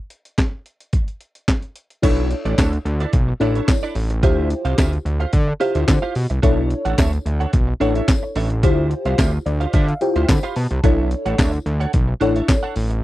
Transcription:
0.10 closed hi-hat
0.25 closed hi-hat
0.38 kick, snare, clap, closed hi-hat
0.66 closed hi-hat
0.80 closed hi-hat
0.93 kick, closed hi-hat
1.08 closed hi-hat
1.21 closed hi-hat
1.35 closed hi-hat
1.48 kick, snare, clap, closed hi-hat
1.62 closed hi-hat
1.76 closed hi-hat
1.90 closed hi-hat
2.02 B1 D4 E4 A4 C#5, kick, closed hi-hat, crash
2.31 muted clean electric guitar stroke, closed hi-hat
2.45 A1 D4 E4 A4 D5, closed hi-hat
2.58 D2 D4 E4 A4 C#5, kick, snare, clap, closed hi-hat, tambourine
2.73 muted clean electric guitar stroke, closed hi-hat
2.85 D2, muted clean electric guitar stroke, closed hi-hat
3.00 D4 E4 A4 D5, closed hi-hat
3.13 B1, muted clean electric guitar stroke, kick, closed hi-hat
3.28 muted clean electric guitar stroke
3.40 A1 D4 E4 A4 C#5 D5, closed hi-hat
3.55 D4 E4 A4 C#5, closed hi-hat
3.68 muted clean electric guitar stroke, kick, snare, clap, closed hi-hat, tambourine
3.83 D4 E4 A4 D5
3.95 A1, muted clean electric guitar stroke, open hi-hat
4.10 muted clean electric guitar stroke, closed hi-hat
4.23 D2 E4 F4 G4 C5 E5, kick, closed hi-hat
4.50 muted clean electric guitar stroke, closed hi-hat
4.65 C2 F4 G4 C5 F5, closed hi-hat
4.78 D2 F4 G4 C5 E5, kick, snare, clap, closed hi-hat, tambourine
4.92 muted clean electric guitar stroke, closed hi-hat
5.05 D2, muted clean electric guitar stroke, closed hi-hat
5.20 F4 G4 C5 F5, closed hi-hat
5.33 D3, kick, closed hi-hat
5.48 muted clean electric guitar stroke
5.60 E4 F4 G4 C5 F5, closed hi-hat
5.75 D2 F4 G4 C5 E5, closed hi-hat
5.88 D3, kick, snare, clap, closed hi-hat, tambourine
6.02 F4 G4 C5 F5
6.15 B2, muted clean electric guitar stroke, open hi-hat
6.30 C2, muted clean electric guitar stroke, closed hi-hat
6.42 B1 D4 E4 A4 C#5 E5, kick, closed hi-hat
6.70 muted clean electric guitar stroke, closed hi-hat
6.85 A1 D4 A4 C#5 F#5, closed hi-hat
6.98 D2 D4 A4 C#5 E5, kick, snare, clap, closed hi-hat, tambourine
7.13 muted clean electric guitar stroke, closed hi-hat
7.26 D2, muted clean electric guitar stroke, closed hi-hat
7.40 D4 A4 C#5 F#5, closed hi-hat
7.53 B1, muted clean electric guitar stroke, kick, closed hi-hat
7.67 muted clean electric guitar stroke
7.80 A1 D4 E4 A4 C#5 F#5, closed hi-hat
7.95 D4 A4 C#5 E5, closed hi-hat
8.08 kick, snare, clap, closed hi-hat, tambourine
8.23 muted clean electric guitar stroke
8.36 A1 D4 A4 C#5 E5, open hi-hat
8.50 muted clean electric guitar stroke, closed hi-hat
8.63 D2 E4 F4 G4 C5 E5, kick, closed hi-hat
8.91 muted clean electric guitar stroke, closed hi-hat
9.05 C2 F4 G4 C5 F5, closed hi-hat
9.18 D2 F4 G4 C5 E5, kick, snare, clap, closed hi-hat, tambourine
9.33 muted clean electric guitar stroke
9.46 D2 D5, muted clean electric guitar stroke, closed hi-hat
9.60 F4 G4 C5 F5, closed hi-hat
9.73 D3 F4 G4 C5 E5, kick, closed hi-hat
9.88 F5, muted clean electric guitar stroke, closed hi-hat
10.01 E4 F4 G4 C5 G5, muted clean electric guitar stroke, closed hi-hat
10.16 D2 F4 G4 C5 E5, closed hi-hat
10.28 D3 B5, muted clean electric guitar stroke, kick, snare, clap, closed hi-hat, tambourine
10.43 F4 G4 C5 F5, closed hi-hat
10.56 B2 A5, muted clean electric guitar stroke, open hi-hat
10.71 C2, muted clean electric guitar stroke, closed hi-hat
10.84 B1 D4 E4 A4 C#5 E5, kick, closed hi-hat
11.11 muted clean electric guitar stroke, closed hi-hat
11.26 A1 D4 A4 C#5 F#5, closed hi-hat
11.38 D2 D4 A4 C#5 E5, kick, snare, clap, closed hi-hat, tambourine
11.53 muted clean electric guitar stroke, closed hi-hat
11.66 D2, muted clean electric guitar stroke, closed hi-hat
11.80 D4 A4 C#5 F#5, closed hi-hat
11.93 B1, muted clean electric guitar stroke, kick, closed hi-hat
12.08 muted clean electric guitar stroke
12.20 A1 D4 E4 A4 C#5 F#5, closed hi-hat
12.35 D4 A4 C#5 E5, closed hi-hat
12.48 muted clean electric guitar stroke, kick, snare, clap, closed hi-hat, tambourine
12.63 D4 A4 C#5 F#5
12.76 A1, muted clean electric guitar stroke, open hi-hat
12.90 muted clean electric guitar stroke, closed hi-hat

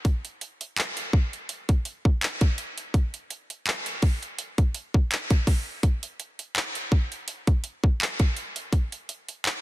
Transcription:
0.05 kick, closed hi-hat
0.25 closed hi-hat
0.41 closed hi-hat
0.61 closed hi-hat
0.77 clap, closed hi-hat
0.97 closed hi-hat
1.13 kick
1.33 closed hi-hat
1.49 closed hi-hat
1.69 kick, closed hi-hat
1.85 closed hi-hat
2.05 kick
2.22 clap, closed hi-hat
2.41 kick, closed hi-hat
2.58 closed hi-hat
2.78 closed hi-hat
2.94 kick, closed hi-hat
3.14 closed hi-hat
3.30 closed hi-hat
3.50 closed hi-hat
3.66 clap, closed hi-hat
3.86 closed hi-hat
4.02 kick, open hi-hat
4.23 closed hi-hat
4.39 closed hi-hat
4.58 kick, closed hi-hat
4.74 closed hi-hat
4.94 kick
5.11 clap, closed hi-hat
5.30 kick, closed hi-hat
5.47 kick, open hi-hat
5.83 kick, closed hi-hat
6.03 closed hi-hat
6.20 closed hi-hat
6.39 closed hi-hat
6.55 clap, closed hi-hat
6.75 closed hi-hat
6.92 kick
7.12 closed hi-hat
7.28 closed hi-hat
7.47 kick, closed hi-hat
7.64 closed hi-hat
7.84 kick
8.00 clap, closed hi-hat
8.19 kick, closed hi-hat
8.37 closed hi-hat
8.56 closed hi-hat
8.73 kick, closed hi-hat
8.92 closed hi-hat
9.09 closed hi-hat
9.29 closed hi-hat
9.45 clap, closed hi-hat

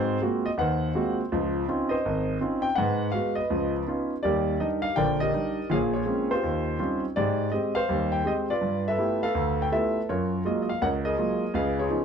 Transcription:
Already playing: G#2 C4 F#4 C5
0.22 G#3 A#3 C4 F4 F#4
0.46 D#5
0.58 D#2 D#3 C5 F#5
0.95 G#3 A#3 C4 F4 F#4
1.32 C#2 F3
1.69 C4 C#4 D#4 F4
1.89 C5 D#5
2.05 G#1
2.41 C4 C#4 D#4 F4
2.62 G5
2.75 G#2 F#5
2.80 B4
3.12 G#3 B3 F#4 F5
3.35 B4 D#5
3.50 C#2 F3
3.87 B3 C#4 D#4 F4
4.23 D#2 G3 G4 A#4 D5
4.60 G3 D4 D#4 D#5
4.82 F5
4.96 A#1 D3 A#4 D5 G5
5.20 G4 A#4 D#5
5.34 G3 D4 D#4
5.70 A#1 A#2 G#4 C#5 F5
5.94 F4 G#4 C#5
6.06 G#3 A#3 C4 C#4
6.31 F4 G4 C5
6.44 D#2
6.79 G3 C4 C#4 D#4 F4
7.16 G#2 G4 D5
7.52 G#3 C4 G4 D#5
7.75 C5 F5
7.89 D#2 G3
8.12 G5
8.24 G#3 C4 G4 D#5
8.50 F4 B4 D5
8.61 G2
8.88 A4 B4 E5
8.98 A3 B3 E4 F4 G4
9.23 A4 B4 F5
9.35 D2
9.62 G5
9.72 A3 B3 E4 F4 G4 A4 B4 E5
10.09 F#2 F4 A#4 C#5
10.45 F#3 G#3 A#3 F4 D#5
10.62 D#5
10.69 F5
10.82 C#2 A#4 C#5 F#5
11.05 G#4 A#4 D#5
11.18 F#3 G#3 A#3 F4
11.54 C#2 G#4 B4 F5
11.79 F4 G#4 C#5
11.90 F3 B3 C#4 D#4

